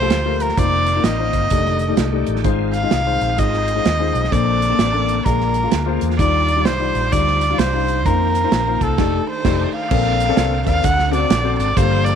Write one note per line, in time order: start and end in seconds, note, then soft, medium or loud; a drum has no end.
0.00 0.11 C2 medium
0.00 0.56 F3 medium
0.00 0.56 A3 medium
0.00 0.15 A3 medium
0.00 1.48 A#3 medium
0.00 0.15 F4 medium
0.00 0.56 G4 medium
0.00 0.16 G4 medium
0.00 0.16 A4 medium
0.00 0.44 C5 medium
0.10 0.51 D2 medium
0.10 snare medium
0.10 closed hi-hat medium
0.25 0.48 A3 medium
0.25 0.49 F4 medium
0.25 0.49 G4 medium
0.25 0.49 A#4 medium
0.40 0.60 A#4 medium
0.40 closed hi-hat medium
0.49 snare soft
0.57 0.97 F1 loud
0.57 1.50 D#3 medium
0.57 0.86 A#3 medium
0.57 1.51 C4 medium
0.57 0.87 D#4 medium
0.57 0.87 F4 medium
0.57 1.50 F4 medium
0.57 0.87 C5 medium
0.57 1.05 D5 medium
0.57 kick medium
0.57 closed hi-hat medium
0.86 closed hi-hat medium
0.95 1.09 A#3 medium
0.95 1.09 D#4 medium
0.95 1.09 F4 medium
0.95 1.10 A#4 medium
1.04 1.29 A1 medium
1.04 2.27 D#5 medium
1.04 snare medium
1.04 closed hi-hat medium
1.18 1.42 A#3 medium
1.18 1.42 D#4 medium
1.18 1.43 F4 medium
1.18 1.43 C5 medium
1.33 1.48 G1 medium
1.33 kick medium
1.33 closed hi-hat medium
1.50 1.91 F1 medium
1.50 2.44 D3 medium
1.50 4.29 D#3 medium
1.50 1.80 A3 medium
1.50 2.44 A3 medium
1.50 1.80 D#4 medium
1.50 1.80 G4 medium
1.50 2.44 G4 medium
1.50 1.81 D5 medium
1.50 kick medium
1.50 closed hi-hat loud
1.65 snare soft
1.79 closed hi-hat medium
1.88 2.02 A3 medium
1.88 2.03 D#4 medium
1.88 2.03 G4 medium
1.88 2.03 D5 medium
1.97 2.23 C2 medium
1.97 snare loud
1.97 closed hi-hat medium
2.12 2.36 A3 medium
2.12 2.36 D#4 medium
2.12 2.36 G4 medium
2.12 2.36 D5 medium
2.27 2.42 A1 medium
2.27 closed hi-hat medium
2.36 snare soft
2.43 2.85 G#1 loud
2.43 3.17 G#2 medium
2.43 2.73 G#3 medium
2.43 4.30 G#3 soft
2.43 5.23 C4 medium
2.43 2.74 D#4 medium
2.43 2.74 F4 medium
2.43 4.30 F4 medium
2.43 2.74 C5 medium
2.43 kick medium
2.43 closed hi-hat medium
2.73 3.40 F5 medium
2.73 closed hi-hat medium
2.82 2.96 G#3 medium
2.82 2.96 D#4 medium
2.82 2.97 F4 medium
2.82 2.97 D#5 medium
2.91 3.17 C2 medium
2.91 snare loud
2.91 closed hi-hat medium
3.06 3.29 G#3 medium
3.06 3.30 D#4 medium
3.06 3.30 F4 medium
3.06 3.30 C5 medium
3.21 3.36 A#1 medium
3.21 closed hi-hat medium
3.37 3.78 G#1 medium
3.37 3.67 G#3 medium
3.37 3.67 D#4 medium
3.37 3.67 F4 medium
3.37 3.68 D#5 medium
3.37 4.34 D#5 medium
3.37 kick medium
3.37 closed hi-hat loud
3.54 snare soft
3.68 closed hi-hat medium
3.75 3.89 G#3 medium
3.75 3.89 D#4 medium
3.75 3.90 F4 medium
3.75 3.90 C5 medium
3.85 4.11 D#2 medium
3.85 snare loud
3.85 closed hi-hat medium
3.99 4.23 G#3 medium
3.99 4.23 D#4 medium
3.99 4.23 F4 medium
3.99 4.24 C5 medium
4.14 4.29 B1 medium
4.14 closed hi-hat medium
4.24 snare soft
4.31 4.72 A#1 loud
4.31 5.04 A#2 medium
4.31 5.24 D3 medium
4.31 4.60 A#3 medium
4.31 5.24 A#3 medium
4.31 4.61 D4 medium
4.31 5.24 A4 medium
4.31 4.61 A4 medium
4.31 4.61 C5 medium
4.31 5.27 D5 medium
4.31 kick loud
4.31 closed hi-hat medium
4.62 closed hi-hat medium
4.69 4.83 A#3 medium
4.69 4.83 D4 medium
4.69 4.84 A4 medium
4.69 4.84 D5 medium
4.79 5.19 A1 medium
4.79 snare loud
4.79 closed hi-hat medium
4.93 5.16 A#3 medium
4.93 5.16 D4 medium
4.93 5.17 A4 medium
4.93 5.17 D5 medium
5.08 closed hi-hat medium
5.25 5.65 A#1 medium
5.25 5.98 A#2 medium
5.25 6.18 D3 medium
5.25 6.18 G#3 medium
5.25 5.54 A#3 medium
5.25 6.18 A#3 medium
5.25 8.95 F4 medium
5.25 5.55 F4 medium
5.25 5.55 G#4 medium
5.25 6.02 A#4 medium
5.25 5.55 D5 medium
5.25 kick medium
5.25 closed hi-hat medium
5.40 snare soft
5.54 closed hi-hat medium
5.63 5.77 A#3 medium
5.63 5.77 F4 medium
5.63 5.77 G#4 medium
5.63 5.77 F5 medium
5.72 5.98 D2 medium
5.72 snare loud
5.72 closed hi-hat loud
5.86 6.10 A#3 medium
5.86 6.10 F4 medium
5.86 6.10 G#4 medium
5.86 6.10 C5 medium
6.01 6.17 E2 medium
6.01 closed hi-hat medium
6.10 snare soft
6.19 6.66 D#2 loud
6.19 6.91 D#3 medium
6.19 6.48 G3 medium
6.19 8.04 G3 medium
6.19 8.04 D4 medium
6.19 6.48 D#4 medium
6.19 8.04 D#4 medium
6.19 6.48 F4 medium
6.19 6.67 D5 loud
6.19 6.48 D5 medium
6.19 kick loud
6.19 closed hi-hat medium
6.48 closed hi-hat medium
6.56 6.70 G3 medium
6.56 6.70 D#4 medium
6.56 6.70 F4 medium
6.56 6.70 D5 medium
6.65 6.91 C2 medium
6.65 7.13 C5 loud
6.65 snare loud
6.65 closed hi-hat medium
6.79 7.03 G3 medium
6.79 7.03 D#4 medium
6.79 7.03 F4 medium
6.79 7.04 D5 medium
6.95 7.09 A#1 medium
6.95 closed hi-hat medium
7.12 7.52 D2 medium
7.12 7.41 G3 medium
7.12 7.41 D#4 medium
7.12 7.41 F4 medium
7.12 7.60 D5 loud
7.12 7.42 D5 medium
7.12 kick medium
7.12 closed hi-hat loud
7.27 snare soft
7.41 closed hi-hat medium
7.50 7.63 G3 medium
7.50 7.64 D#4 medium
7.50 7.64 F4 medium
7.50 7.64 F5 medium
7.58 8.06 C2 medium
7.58 8.07 C5 medium
7.58 snare loud
7.58 closed hi-hat medium
7.73 7.96 G3 medium
7.73 7.97 D#4 medium
7.73 7.97 F4 medium
7.73 7.97 F5 medium
7.88 closed hi-hat medium
8.06 8.45 F2 loud
8.06 9.90 D#3 medium
8.06 8.34 A#3 medium
8.06 8.98 A#3 medium
8.06 8.98 C4 soft
8.06 8.35 D#4 medium
8.06 8.35 F4 medium
8.06 8.85 A#4 medium
8.06 8.35 C5 medium
8.06 kick medium
8.06 closed hi-hat medium
8.35 closed hi-hat medium
8.43 8.57 A#3 medium
8.43 8.57 D#4 medium
8.43 8.57 F4 medium
8.43 8.57 C5 medium
8.52 8.77 A#1 medium
8.52 snare loud
8.52 closed hi-hat medium
8.67 8.90 A#3 medium
8.67 8.90 D#4 medium
8.67 8.90 F4 medium
8.67 8.90 C5 medium
8.81 8.96 C2 medium
8.81 9.29 A4 medium
8.81 kick medium
8.81 closed hi-hat medium
8.98 9.18 F1 medium
8.98 9.18 A3 medium
8.98 9.91 A3 medium
8.98 9.91 D4 medium
8.98 9.18 D#4 medium
8.98 9.19 G4 medium
8.98 9.91 G4 medium
8.98 9.19 D5 medium
8.98 kick loud
8.98 snare medium
8.98 crash medium
9.30 9.72 C5 medium
9.45 9.65 F1 loud
9.45 9.65 A3 medium
9.45 9.65 D#4 medium
9.45 9.65 G4 medium
9.45 9.65 D5 medium
9.45 kick loud
9.45 snare medium
9.45 crash medium
9.75 10.64 F5 medium
9.91 10.31 A#1 loud
9.91 10.63 A#2 medium
9.91 10.83 D3 medium
9.91 10.83 A#3 medium
9.91 10.20 C4 medium
9.91 11.75 C4 medium
9.91 11.75 A4 medium
9.91 10.20 A4 medium
9.91 10.21 A#4 medium
9.91 10.21 D5 medium
9.91 kick loud
9.91 crash medium
10.20 closed hi-hat medium
10.29 10.52 C4 medium
10.29 10.52 A4 medium
10.29 10.52 A#4 medium
10.29 10.52 D5 loud
10.37 10.62 C2 medium
10.37 snare loud
10.37 closed hi-hat loud
10.65 10.81 D#2 medium
10.65 10.83 C4 medium
10.65 10.84 A4 medium
10.65 10.84 A#4 medium
10.65 10.84 D5 medium
10.65 10.86 F5 medium
10.65 kick medium
10.65 closed hi-hat medium
10.83 11.24 D2 medium
10.83 11.55 D3 medium
10.83 11.76 D3 medium
10.83 11.76 F#4 medium
10.83 11.14 F#5 medium
10.83 kick loud
10.83 closed hi-hat loud
10.99 snare soft
11.11 11.29 C4 medium
11.11 11.30 F#4 medium
11.11 11.30 A4 medium
11.11 11.30 D5 medium
11.11 11.57 D5 medium
11.11 closed hi-hat medium
11.30 11.55 A#1 loud
11.30 snare loud
11.30 closed hi-hat loud
11.44 11.67 C4 medium
11.44 11.68 F#4 medium
11.44 11.68 A4 medium
11.44 11.68 C5 medium
11.59 11.74 G#1 loud
11.59 11.78 D5 medium
11.59 closed hi-hat medium
11.76 12.15 G1 loud
11.76 12.15 G2 medium
11.76 12.15 F3 medium
11.76 12.05 A#3 medium
11.76 12.15 A#3 medium
11.76 12.05 G4 medium
11.76 12.15 G4 medium
11.76 12.15 A4 medium
11.76 12.06 A4 medium
11.76 12.06 C5 medium
11.76 12.06 F5 medium
11.76 kick loud
11.76 closed hi-hat loud
12.05 12.15 D5 loud
12.05 closed hi-hat medium